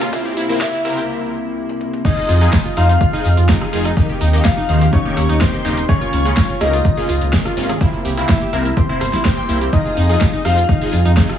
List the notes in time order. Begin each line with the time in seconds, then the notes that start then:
Already playing: C#2 C#3 A#3 F4
0.01 F4, cross-stick, closed hi-hat, cabasa
0.13 C2 C3 A#3 C4 E4, kick, closed hi-hat, cabasa
0.25 G4, closed hi-hat, cabasa
0.37 E4, open hi-hat
0.49 C3 A#3 C4 E4, closed hi-hat, cabasa
0.61 E4 G4 E5, kick, snare, closed hi-hat, cabasa
0.73 E4, closed hi-hat, cabasa
0.85 C3 A#3 C4 E4 A#4, cross-stick, open hi-hat
0.97 G4, closed hi-hat, cabasa
1.69 high tom
1.81 mid tom
1.93 mid tom
2.05 F3 C4 D#4 F4 G#4 D#5, kick, closed hi-hat, crash, cabasa
2.17 D#4, cabasa
2.29 F2 F4, open hi-hat
2.41 F3 D#4 F4 G#4, closed hi-hat, cabasa
2.53 D#4, kick, snare, closed hi-hat, cabasa
2.65 F4, cabasa
2.77 F2 F3 D#4 F4 C5 F5, cross-stick, open hi-hat
2.89 D#4, closed hi-hat, cabasa
3.01 F4, kick, closed hi-hat, cabasa
3.13 F3 D#4 F4 G#4, cabasa
3.25 F2 D#4, open hi-hat
3.37 F2 F4, closed hi-hat, cabasa
3.49 F3 D#4 F4 G#4, kick, snare, closed hi-hat, cabasa
3.61 D#4, cross-stick, cabasa
3.73 F1 D#3 D#4 F4 G#4, open hi-hat
3.85 D#4, cross-stick, closed hi-hat, cabasa
3.97 D#3 A#3 D#4 G4 A#4, kick, closed hi-hat, cabasa
4.09 G4, cabasa
4.21 D#2 D#4, open hi-hat
4.33 D#3 A#3 D#4 G4, closed hi-hat, cabasa
4.45 F4 G4 F5, kick, snare, closed hi-hat, cabasa
4.57 D#4, cabasa
4.69 D#2 D#3 A#3 D#4 C5, open hi-hat
4.81 G4, closed hi-hat, cabasa
4.93 C#4 D#4 C#5, kick, closed hi-hat, cabasa
5.05 D#3 A#3 D#4 G4, cabasa
5.17 D#2 G4, cross-stick, open hi-hat
5.29 D#2 D#4, closed hi-hat, cabasa
5.41 D#3 A#3 C4 D#4 G4 C5, kick, snare, closed hi-hat, cabasa
5.53 G4, cabasa
5.65 D#1 C#3 A#3 D#4 G4, open hi-hat
5.77 D#4, closed hi-hat, cabasa
5.89 C#3 G#3 A#3 C#4 F4 G#4 C#5, kick, closed hi-hat, cabasa
6.01 F4, cabasa
6.13 C#2 F4, open hi-hat
6.25 C#3 A#3 C#4 F4 G#4, closed hi-hat, cabasa
6.37 F4, kick, snare, closed hi-hat, cabasa
6.49 F4, cabasa
6.61 C#2 C#3 A#3 C#4 D#4 G#4 A#4 D#5, cross-stick, open hi-hat
6.73 F4, closed hi-hat, cabasa
6.85 F4, kick, closed hi-hat, cabasa
6.97 C#3 A#3 C#4 F4 G#4, cabasa
7.09 C#2 F4, open hi-hat
7.21 C#2 F4, closed hi-hat, cabasa
7.33 C#3 A#3 C#4 F4 G#4, kick, snare, closed hi-hat, cabasa
7.45 F4, cross-stick, cabasa
7.57 G#1 C3 A#3 C#4 F4, open hi-hat
7.69 G#4, cross-stick, closed hi-hat, cabasa
7.81 C3 G3 A#3 C4 E4, kick, closed hi-hat, cabasa
7.93 E4, cabasa
8.05 C2 G4, open hi-hat
8.17 C3 A#3 C4 E4, closed hi-hat, cabasa
8.29 E4 E5, kick, snare, closed hi-hat, cabasa
8.41 G4, cabasa
8.53 C2 C3 A#3 C4 E4 A#4, open hi-hat
8.65 E4, closed hi-hat, cabasa
8.77 C4 G4 C5, kick, closed hi-hat, cabasa
8.89 C3 A#3 C4 E4, cabasa
9.01 G1 C5, cross-stick, open hi-hat
9.13 A#1 E4, snare, closed hi-hat, cabasa
9.25 C3 A#3 C4 G4 C5, kick, snare, closed hi-hat, cabasa
9.37 G5, cabasa
9.49 C2 A#3 C4 E4, open hi-hat
9.61 G4, closed hi-hat, cabasa
9.73 F3 C4 D#4 F4 G#4 D#5, kick, closed hi-hat, cabasa
9.85 F4, cabasa
9.97 F2 D#4, open hi-hat
10.09 F3 D#4 F4 G#4, closed hi-hat, cabasa
10.21 F4, kick, snare, closed hi-hat, cabasa
10.33 D#4, cabasa
10.45 F2 F3 D#4 F4 C5 F5, cross-stick, open hi-hat
10.57 F4, closed hi-hat, cabasa
10.69 D#4, kick, closed hi-hat, cabasa
10.81 F3 D#4 F4 G#4, cabasa
10.93 F2 F4, open hi-hat
11.05 F2 D#4, closed hi-hat, cabasa
11.17 F3 D#4 F4 G#4, kick, snare, closed hi-hat, cabasa
11.29 F4, cross-stick, cabasa